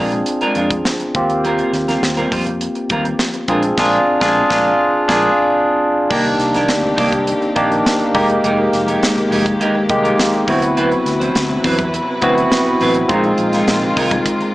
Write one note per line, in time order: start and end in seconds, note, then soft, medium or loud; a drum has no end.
0.00 0.21 A#1 medium
0.00 0.19 G#3 medium
0.00 1.16 C4 medium
0.00 0.13 D4 medium
0.00 1.16 D4 medium
0.00 0.12 F4 medium
0.00 1.16 F4 medium
0.00 1.17 G#4 medium
0.00 0.11 A#4 medium
0.12 muted clean electric guitar stroke soft
0.12 closed hi-hat medium
0.12 low conga medium
0.26 muted clean electric guitar stroke soft
0.26 closed hi-hat medium
0.26 muted conga soft
0.41 0.54 G#3 medium
0.41 0.55 D4 medium
0.41 0.56 F4 medium
0.41 0.56 A#4 medium
0.41 closed hi-hat soft
0.41 muted conga soft
0.55 0.79 F2 medium
0.55 0.73 G#3 medium
0.55 0.71 D4 medium
0.55 0.70 F4 medium
0.55 0.69 A#4 medium
0.55 closed hi-hat medium
0.55 high conga medium
0.71 muted clean electric guitar stroke soft
0.71 kick loud
0.71 closed hi-hat medium
0.85 muted clean electric guitar stroke soft
0.85 snare loud
0.85 muted conga soft
0.85 high conga medium
1.00 muted clean electric guitar stroke soft
1.00 closed hi-hat medium
1.00 muted conga soft
1.15 1.61 D#2 medium
1.15 2.08 A#3 medium
1.15 2.09 C4 medium
1.15 2.09 F4 medium
1.15 2.09 G4 medium
1.15 kick loud
1.15 closed hi-hat medium
1.15 high conga soft
1.15 low conga medium
1.30 muted clean electric guitar stroke soft
1.30 closed hi-hat medium
1.44 1.71 G3 medium
1.44 1.71 C4 medium
1.44 1.72 F4 medium
1.44 1.72 A#4 medium
1.44 closed hi-hat medium
1.58 closed hi-hat soft
1.58 muted conga soft
1.73 1.96 D#2 medium
1.73 muted clean electric guitar stroke soft
1.73 snare soft
1.73 closed hi-hat medium
1.87 2.02 G3 soft
1.87 2.02 C4 medium
1.87 2.03 F4 medium
1.87 2.03 A#4 medium
1.87 snare soft
1.87 closed hi-hat medium
1.87 high conga medium
2.02 2.25 D#2 medium
2.02 muted clean electric guitar stroke soft
2.02 snare loud
2.17 2.30 G3 medium
2.17 2.31 C4 medium
2.17 2.32 F4 medium
2.17 2.33 A#4 medium
2.17 closed hi-hat medium
2.17 muted conga soft
2.17 low conga medium
2.32 2.66 F2 medium
2.32 2.48 G3 medium
2.32 2.46 C4 medium
2.32 2.46 F4 medium
2.32 2.46 C5 medium
2.32 kick medium
2.32 open hi-hat medium
2.32 high conga medium
2.46 muted clean electric guitar stroke soft
2.46 closed hi-hat medium
2.46 low conga medium
2.61 muted clean electric guitar stroke soft
2.61 closed hi-hat medium
2.61 muted conga soft
2.75 muted clean electric guitar stroke soft
2.75 closed hi-hat soft
2.75 muted conga soft
2.89 3.13 D#2 medium
2.89 3.12 G3 medium
2.89 3.05 C4 medium
2.89 3.05 F4 medium
2.89 3.04 A#4 medium
2.89 kick medium
2.89 closed hi-hat medium
2.89 high conga medium
3.05 muted clean electric guitar stroke medium
3.05 closed hi-hat soft
3.19 muted clean electric guitar stroke soft
3.19 snare loud
3.19 muted conga soft
3.19 high conga medium
3.34 muted clean electric guitar stroke soft
3.34 closed hi-hat medium
3.48 3.71 A#1 medium
3.48 3.70 G#3 medium
3.48 3.77 C4 medium
3.48 3.77 D4 medium
3.48 3.63 D4 medium
3.48 3.78 F4 medium
3.48 3.63 F4 medium
3.48 3.78 G#4 medium
3.48 3.62 A#4 medium
3.48 kick loud
3.48 closed hi-hat medium
3.48 high conga soft
3.48 low conga medium
3.63 muted clean electric guitar stroke soft
3.63 closed hi-hat medium
3.77 3.97 A#1 loud
3.77 3.97 G#3 loud
3.77 3.98 D4 loud
3.77 3.98 F4 loud
3.77 3.98 G#4 medium
3.77 3.98 A#4 loud
3.77 kick loud
3.77 snare loud
3.77 crash medium
4.20 4.41 A#1 loud
4.20 4.42 G#3 loud
4.20 4.41 D4 medium
4.20 4.41 F4 loud
4.20 4.41 G#4 loud
4.20 4.41 A#4 medium
4.20 kick loud
4.20 snare loud
4.49 4.70 A#1 loud
4.49 4.70 G#3 medium
4.49 4.70 D4 medium
4.49 4.70 F4 loud
4.49 4.70 F4 medium
4.49 4.71 G#4 medium
4.49 4.71 A#4 medium
4.49 kick loud
4.49 snare loud
5.08 5.29 A#1 medium
5.08 5.28 G#3 medium
5.08 5.28 D4 medium
5.08 5.29 D4 medium
5.08 5.28 F4 medium
5.08 5.29 F4 medium
5.08 5.29 G#4 medium
5.08 5.29 A#4 medium
5.08 kick loud
5.08 snare loud
5.08 crash medium
6.10 6.34 C2 loud
6.10 6.32 D#3 medium
6.10 8.14 D#3 medium
6.10 7.01 A#3 medium
6.10 6.26 A#3 medium
6.10 10.44 A#3 medium
6.10 8.13 C4 medium
6.10 7.01 D4 medium
6.10 6.25 D4 medium
6.10 7.01 D#4 medium
6.10 7.01 G4 medium
6.10 6.24 G4 medium
6.10 8.13 G4 medium
6.10 kick loud
6.10 crash loud
6.25 muted clean electric guitar stroke soft
6.25 closed hi-hat soft
6.25 muted conga soft
6.38 6.69 C2 loud
6.38 muted clean electric guitar stroke soft
6.38 snare soft
6.38 closed hi-hat medium
6.53 6.72 D#3 soft
6.53 6.71 A#3 medium
6.53 6.71 D4 medium
6.53 6.71 A#4 medium
6.53 snare soft
6.53 closed hi-hat medium
6.53 high conga medium
6.68 6.92 D2 medium
6.68 snare loud
6.68 closed hi-hat medium
6.83 muted clean electric guitar stroke soft
6.83 low conga medium
6.96 7.32 C2 medium
6.96 7.19 D#3 medium
6.96 7.12 A#3 medium
6.96 7.11 D4 medium
6.96 7.10 G4 loud
6.96 kick medium
6.96 open hi-hat medium
6.96 high conga medium
7.11 muted clean electric guitar stroke soft
7.11 kick medium
7.11 closed hi-hat medium
7.11 low conga medium
7.26 muted clean electric guitar stroke soft
7.26 closed hi-hat medium
7.26 muted conga soft
7.41 muted clean electric guitar stroke soft
7.41 closed hi-hat soft
7.41 muted conga soft
7.55 7.79 A#1 medium
7.55 7.77 D#3 medium
7.55 8.13 A#3 medium
7.55 7.70 A#3 medium
7.55 7.69 D4 medium
7.55 8.15 D4 medium
7.55 8.14 D#4 medium
7.55 8.14 G4 medium
7.55 7.69 G4 medium
7.55 kick medium
7.55 closed hi-hat medium
7.55 high conga medium
7.70 muted clean electric guitar stroke medium
7.70 closed hi-hat soft
7.85 muted clean electric guitar stroke soft
7.85 snare loud
7.85 closed hi-hat medium
7.85 high conga medium
8.00 muted clean electric guitar stroke medium
8.00 closed hi-hat soft
8.00 muted conga soft
8.14 8.37 F1 medium
8.14 10.45 D#3 medium
8.14 9.08 G#3 medium
8.14 8.36 G#3 medium
8.14 10.46 G#3 medium
8.14 9.08 A#3 medium
8.14 8.29 D#4 medium
8.14 9.08 D#4 medium
8.14 9.08 G4 medium
8.14 10.46 G4 medium
8.14 8.29 G4 medium
8.14 8.28 A#4 medium
8.14 kick medium
8.14 open hi-hat medium
8.14 high conga soft
8.14 low conga medium
8.29 muted clean electric guitar stroke soft
8.29 closed hi-hat medium
8.44 8.67 F1 loud
8.44 8.65 G#3 medium
8.44 8.58 D#4 medium
8.44 8.58 G4 medium
8.44 8.57 A#4 medium
8.44 closed hi-hat medium
8.58 muted clean electric guitar stroke soft
8.58 muted conga soft
8.73 8.96 F1 medium
8.73 muted clean electric guitar stroke soft
8.73 snare soft
8.73 closed hi-hat medium
8.87 9.05 G#3 medium
8.87 9.05 D#4 soft
8.87 9.04 G4 medium
8.87 9.04 A#4 medium
8.87 closed hi-hat medium
8.87 high conga medium
9.02 snare loud
9.02 closed hi-hat medium
9.02 muted conga soft
9.16 muted clean electric guitar stroke soft
9.16 closed hi-hat soft
9.16 low conga medium
9.30 9.54 F1 medium
9.30 9.52 G#3 medium
9.30 9.46 D#4 medium
9.30 9.45 G4 medium
9.30 9.44 A#4 medium
9.30 open hi-hat medium
9.30 high conga medium
9.45 muted clean electric guitar stroke soft
9.45 kick medium
9.45 closed hi-hat medium
9.45 low conga medium
9.60 9.82 G#3 medium
9.60 9.75 D#4 medium
9.60 9.75 G4 medium
9.60 9.74 A#4 medium
9.60 closed hi-hat medium
9.60 muted conga soft
9.75 muted clean electric guitar stroke soft
9.75 muted conga soft
9.89 10.13 C2 loud
9.89 10.48 G#3 medium
9.89 10.48 A#3 medium
9.89 10.48 D#4 medium
9.89 10.48 G4 loud
9.89 muted clean electric guitar stroke soft
9.89 kick medium
9.89 closed hi-hat medium
9.89 high conga medium
10.03 10.21 G#3 medium
10.03 10.21 D#4 medium
10.03 10.21 G4 medium
10.03 10.20 A#4 medium
10.03 closed hi-hat medium
10.18 snare loud
10.18 closed hi-hat medium
10.18 muted conga soft
10.18 high conga medium
10.33 muted clean electric guitar stroke soft
10.33 closed hi-hat soft
10.33 muted conga soft
10.47 10.94 D2 medium
10.47 13.07 C3 medium
10.47 10.69 F#3 medium
10.47 13.07 F#3 medium
10.47 11.41 B3 medium
10.47 10.62 C4 medium
10.47 11.41 C4 medium
10.47 13.07 E4 medium
10.47 10.62 E4 loud
10.47 11.42 E4 medium
10.47 11.42 F#4 medium
10.47 13.07 B4 medium
10.47 10.61 B4 medium
10.47 kick loud
10.47 open hi-hat medium
10.47 high conga soft
10.47 low conga medium
10.62 muted clean electric guitar stroke soft
10.62 closed hi-hat medium
10.77 10.98 F#3 medium
10.77 10.92 C4 medium
10.77 10.91 E4 medium
10.77 10.91 B4 loud
10.77 closed hi-hat medium
10.77 muted conga soft
10.91 muted clean electric guitar stroke soft
10.91 closed hi-hat soft
10.91 muted conga soft
11.06 11.29 D2 medium
11.06 muted clean electric guitar stroke soft
11.06 snare soft
11.06 closed hi-hat medium
11.20 11.38 F#3 soft
11.20 11.37 C4 medium
11.20 11.37 E4 medium
11.20 11.37 C5 medium
11.20 closed hi-hat medium
11.20 high conga medium
11.35 11.58 D2 medium
11.35 snare loud
11.35 closed hi-hat medium
11.49 muted clean electric guitar stroke soft
11.49 low conga medium
11.63 11.98 E2 medium
11.63 11.85 F#3 medium
11.63 11.79 C4 medium
11.63 11.78 E4 medium
11.63 11.77 B4 medium
11.63 kick loud
11.63 open hi-hat medium
11.63 high conga medium
11.78 muted clean electric guitar stroke soft
11.78 kick medium
11.78 closed hi-hat medium
11.78 low conga medium
11.93 muted clean electric guitar stroke soft
11.93 closed hi-hat loud
11.93 muted conga soft
12.07 muted clean electric guitar stroke soft
12.21 12.45 D2 medium
12.21 12.43 F#3 medium
12.21 12.90 B3 medium
12.21 12.36 C4 medium
12.21 12.90 C4 medium
12.21 12.35 E4 medium
12.21 12.90 E4 medium
12.21 12.91 F#4 loud
12.21 12.34 B4 medium
12.21 kick medium
12.21 closed hi-hat medium
12.21 high conga medium
12.36 muted clean electric guitar stroke soft
12.36 closed hi-hat medium
12.51 muted clean electric guitar stroke soft
12.51 snare loud
12.51 closed hi-hat medium
12.51 muted conga soft
12.51 high conga medium
12.66 muted clean electric guitar stroke soft
12.66 muted conga soft
12.80 13.04 A1 loud
12.80 13.02 F#3 medium
12.80 12.96 C4 medium
12.80 12.95 E4 medium
12.80 12.95 B4 loud
12.80 open hi-hat medium
12.80 high conga soft
12.80 low conga medium
12.95 muted clean electric guitar stroke soft
12.95 closed hi-hat medium
13.08 13.33 A#1 loud
13.08 14.55 D#3 medium
13.08 13.99 G#3 medium
13.08 14.55 G#3 medium
13.08 13.31 G#3 medium
13.08 14.55 A#3 medium
13.08 13.99 C4 medium
13.08 13.99 D#4 medium
13.08 13.25 D#4 medium
13.08 14.00 F4 loud
13.08 14.55 F4 loud
13.08 13.24 F4 loud
13.08 13.24 A#4 medium
13.08 kick loud
13.08 closed hi-hat medium
13.24 muted clean electric guitar stroke soft
13.24 closed hi-hat soft
13.24 muted conga soft
13.38 13.61 A#1 medium
13.38 muted clean electric guitar stroke soft
13.38 closed hi-hat medium
13.52 13.71 G#3 medium
13.52 13.71 D#4 medium
13.52 13.70 F4 medium
13.52 13.70 A#4 medium
13.52 snare soft
13.52 closed hi-hat medium
13.52 high conga medium
13.67 13.90 A#1 medium
13.67 snare loud
13.67 closed hi-hat medium
13.82 muted clean electric guitar stroke soft
13.82 muted conga soft
13.82 low conga medium
13.96 14.20 C2 medium
13.96 14.18 G#3 medium
13.96 14.12 D#4 medium
13.96 14.12 F4 medium
13.96 14.11 A#4 medium
13.96 kick loud
13.96 open hi-hat medium
13.96 high conga medium
14.11 muted clean electric guitar stroke soft
14.11 kick medium
14.11 closed hi-hat medium
14.11 low conga medium
14.26 muted clean electric guitar stroke soft
14.26 kick loud
14.26 closed hi-hat loud
14.40 muted clean electric guitar stroke medium
14.40 closed hi-hat soft
14.40 muted conga soft